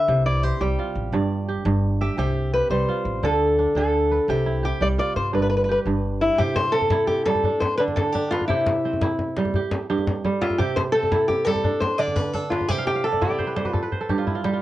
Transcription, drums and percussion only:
6.39 djembe bass medium
6.56 djembe slap medium
6.56 djembe tone medium
6.64 djembe slap soft
6.82 djembe tone medium
6.90 djembe slap medium
6.90 djembe bass medium
7.08 djembe slap soft
7.08 djembe tone medium
7.26 djembe slap medium
7.35 djembe slap soft
7.35 djembe tone soft
7.44 djembe slap soft
7.44 djembe bass medium
7.62 djembe slap medium
7.62 djembe tone medium
7.88 djembe tone medium
7.97 djembe slap medium
7.97 djembe bass medium
8.06 djembe slap soft
8.15 djembe tone medium
8.32 djembe slap medium
8.41 djembe tone soft
8.49 djembe bass medium
8.67 djembe slap medium
8.67 djembe tone medium
8.76 djembe slap soft
8.84 djembe slap soft
8.93 djembe slap soft
8.93 djembe tone medium
9.01 djembe slap medium
9.01 djembe bass medium
9.19 djembe slap soft
9.19 djembe tone medium
9.28 djembe slap soft
9.36 djembe slap medium
9.45 djembe slap soft
9.45 djembe tone soft
9.54 djembe slap soft
9.54 djembe bass medium
9.71 djembe slap medium
9.71 djembe tone medium
9.98 djembe tone soft
10.07 djembe slap medium
10.07 djembe bass medium
10.15 djembe slap soft
10.25 djembe tone medium
10.33 djembe slap soft
10.42 djembe slap medium
10.50 djembe tone soft
10.60 djembe bass medium
10.77 djembe slap medium
10.77 djembe tone medium
10.86 djembe slap soft
10.94 djembe slap soft
11.03 djembe slap soft
11.03 djembe tone medium
11.12 djembe slap medium
11.12 djembe bass medium
11.29 djembe slap soft
11.29 djembe tone medium
11.38 djembe slap soft
11.47 djembe slap medium
11.55 djembe slap soft
11.55 djembe tone soft
11.64 djembe slap soft
11.64 djembe bass medium
11.82 djembe slap medium
11.82 djembe tone medium
12.08 djembe tone soft
12.16 djembe slap medium
12.16 djembe bass medium
12.25 djembe slap soft
12.34 djembe tone medium
12.44 djembe slap soft
12.51 djembe slap medium
12.61 djembe tone soft
12.69 djembe slap soft
12.69 djembe bass medium
12.78 djembe slap soft
12.87 djembe slap medium
12.96 djembe slap soft
13.04 djembe slap soft
13.13 djembe tone soft
13.22 djembe slap medium
13.22 djembe bass medium
13.39 djembe tone medium
13.56 djembe slap medium
13.65 djembe tone soft
13.74 djembe slap soft
13.74 djembe bass medium
13.83 djembe slap soft
13.92 djembe bass soft
14.09 djembe bass soft
14.27 djembe bass soft
14.44 djembe slap medium

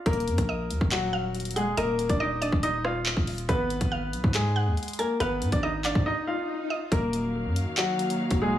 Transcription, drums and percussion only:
0.06 kick loud
0.06 closed hi-hat medium
0.13 closed hi-hat medium
0.20 closed hi-hat medium
0.28 closed hi-hat medium
0.38 kick medium
0.38 closed hi-hat medium
0.71 closed hi-hat medium
0.81 kick loud
0.92 clap loud
0.92 closed hi-hat medium
1.35 closed hi-hat soft
1.40 closed hi-hat medium
1.45 closed hi-hat medium
1.51 closed hi-hat medium
1.56 closed hi-hat medium
1.77 closed hi-hat medium
1.99 closed hi-hat medium
2.09 kick loud
2.09 closed hi-hat medium
2.42 closed hi-hat medium
2.52 kick loud
2.63 closed hi-hat medium
2.85 cross-stick loud
3.06 clap loud
3.17 kick medium
3.27 closed hi-hat medium
3.27 open hi-hat medium
3.38 closed hi-hat medium
3.49 kick loud
3.49 closed hi-hat medium
3.70 closed hi-hat medium
3.81 kick medium
3.81 closed hi-hat medium
4.13 closed hi-hat medium
4.24 kick loud
4.34 clap loud
4.34 closed hi-hat medium
4.77 closed hi-hat soft
4.83 closed hi-hat medium
4.88 closed hi-hat medium
4.93 closed hi-hat medium
4.99 closed hi-hat medium
5.20 closed hi-hat medium
5.42 closed hi-hat medium
5.52 kick medium
5.52 closed hi-hat medium
5.85 clap medium
5.85 closed hi-hat medium
5.95 kick loud
6.92 kick loud
6.92 closed hi-hat medium
7.13 closed hi-hat medium
7.56 closed hi-hat medium
7.77 clap loud
7.77 closed hi-hat medium
7.99 closed hi-hat medium
8.10 closed hi-hat medium
8.31 kick medium
8.31 closed hi-hat medium

